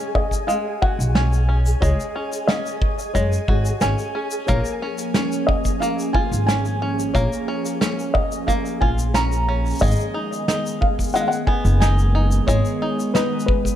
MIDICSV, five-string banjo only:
0, 0, Header, 1, 2, 480
1, 0, Start_track
1, 0, Tempo, 666667
1, 1310, Time_signature, 4, 2, 24, 8
1, 9904, End_track
2, 0, Start_track
2, 0, Title_t, "Five-string banjo"
2, 0, Program_c, 0, 105
2, 0, Note_on_c, 0, 56, 82
2, 0, Note_on_c, 0, 61, 64
2, 0, Note_on_c, 0, 68, 72
2, 337, Note_off_c, 0, 56, 0
2, 346, Note_on_c, 0, 56, 81
2, 587, Note_off_c, 0, 61, 0
2, 590, Note_on_c, 0, 66, 61
2, 832, Note_on_c, 0, 61, 67
2, 1067, Note_off_c, 0, 66, 0
2, 1070, Note_off_c, 0, 61, 0
2, 1070, Note_on_c, 0, 61, 55
2, 1301, Note_off_c, 0, 56, 0
2, 1304, Note_off_c, 0, 68, 0
2, 1309, Note_on_c, 0, 56, 81
2, 1313, Note_on_c, 0, 68, 62
2, 1552, Note_off_c, 0, 61, 0
2, 1552, Note_on_c, 0, 61, 60
2, 1792, Note_off_c, 0, 61, 0
2, 1792, Note_on_c, 0, 61, 70
2, 2259, Note_off_c, 0, 56, 0
2, 2267, Note_on_c, 0, 56, 78
2, 2509, Note_off_c, 0, 61, 0
2, 2512, Note_on_c, 0, 66, 61
2, 2753, Note_on_c, 0, 61, 65
2, 2984, Note_off_c, 0, 66, 0
2, 2987, Note_off_c, 0, 61, 0
2, 2987, Note_on_c, 0, 61, 53
2, 3225, Note_off_c, 0, 56, 0
2, 3228, Note_on_c, 0, 58, 79
2, 3229, Note_off_c, 0, 68, 0
2, 3232, Note_on_c, 0, 70, 68
2, 3473, Note_off_c, 0, 61, 0
2, 3473, Note_on_c, 0, 61, 55
2, 3705, Note_off_c, 0, 61, 0
2, 3714, Note_on_c, 0, 61, 69
2, 4181, Note_off_c, 0, 58, 0
2, 4189, Note_on_c, 0, 58, 74
2, 4429, Note_on_c, 0, 65, 60
2, 4662, Note_off_c, 0, 61, 0
2, 4670, Note_on_c, 0, 61, 70
2, 4902, Note_off_c, 0, 61, 0
2, 4911, Note_on_c, 0, 61, 58
2, 5139, Note_off_c, 0, 58, 0
2, 5145, Note_off_c, 0, 70, 0
2, 5148, Note_on_c, 0, 58, 86
2, 5153, Note_on_c, 0, 70, 68
2, 5378, Note_off_c, 0, 61, 0
2, 5387, Note_on_c, 0, 61, 59
2, 5615, Note_off_c, 0, 61, 0
2, 5624, Note_on_c, 0, 61, 68
2, 6098, Note_off_c, 0, 58, 0
2, 6106, Note_on_c, 0, 58, 80
2, 6341, Note_off_c, 0, 65, 0
2, 6350, Note_on_c, 0, 65, 61
2, 6579, Note_off_c, 0, 61, 0
2, 6588, Note_on_c, 0, 61, 72
2, 6821, Note_off_c, 0, 61, 0
2, 6830, Note_on_c, 0, 61, 58
2, 7066, Note_off_c, 0, 58, 0
2, 7069, Note_on_c, 0, 56, 83
2, 7071, Note_off_c, 0, 70, 0
2, 7074, Note_on_c, 0, 68, 70
2, 7118, Note_off_c, 0, 61, 0
2, 7118, Note_off_c, 0, 65, 0
2, 7303, Note_on_c, 0, 63, 63
2, 7539, Note_off_c, 0, 63, 0
2, 7548, Note_on_c, 0, 63, 71
2, 8029, Note_off_c, 0, 56, 0
2, 8032, Note_on_c, 0, 56, 81
2, 8266, Note_on_c, 0, 59, 67
2, 8500, Note_off_c, 0, 63, 0
2, 8508, Note_on_c, 0, 63, 69
2, 8739, Note_off_c, 0, 63, 0
2, 8747, Note_on_c, 0, 63, 61
2, 8984, Note_off_c, 0, 68, 0
2, 8986, Note_off_c, 0, 56, 0
2, 8988, Note_on_c, 0, 56, 79
2, 8993, Note_on_c, 0, 68, 72
2, 9222, Note_off_c, 0, 63, 0
2, 9231, Note_on_c, 0, 63, 59
2, 9464, Note_off_c, 0, 63, 0
2, 9473, Note_on_c, 0, 63, 70
2, 9904, Note_off_c, 0, 56, 0
2, 9904, Note_off_c, 0, 59, 0
2, 9904, Note_off_c, 0, 63, 0
2, 9904, Note_off_c, 0, 68, 0
2, 9904, End_track
0, 0, End_of_file